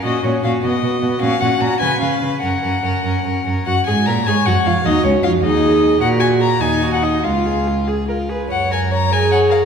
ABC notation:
X:1
M:6/8
L:1/16
Q:3/8=99
K:F#
V:1 name="Violin"
d2 c2 e2 d6 | e2 f2 a2 g2 e4 | f8- f2 z2 | f2 g2 a2 g2 f2 e2 |
d2 c2 e2 d6 | f2 g2 a2 g3 f d2 | e6 z6 | f2 g2 a2 g2 f2 e2 |]
V:2 name="Violin"
F2 F2 F2 F2 F2 F2 | F2 F2 F2 B2 B2 B2 | A2 A2 A2 A2 A2 A2 | F2 G2 A2 G2 F2 E2 |
D2 C2 E2 D6 | A2 F2 A2 D2 F2 D2 | E2 G2 E2 G2 E2 G2 | c2 A2 c2 A2 c2 A2 |]
V:3 name="Viola"
C2 C2 C2 B,2 B,2 B,2 | C2 C2 C2 C2 C2 C2 | C2 C2 C2 C2 C2 C2 | z6 c6 |
F6 G6 | F6 D6 | E6 G2 A2 B2 | z6 G6 |]
V:4 name="Cello" clef=bass
A,,2 A,,2 A,,2 B,,2 B,,2 B,,2 | A,,2 A,,2 A,,2 C,2 C,2 C,2 | F,,2 F,,2 F,,2 F,,2 F,,2 F,,2 | F,,2 G,,2 A,,2 G,,2 F,,2 E,,2 |
D,,2 C,,2 E,,2 D,,6 | A,,6 D,,6 | C,,8- C,,2 z2 | F,,12 |]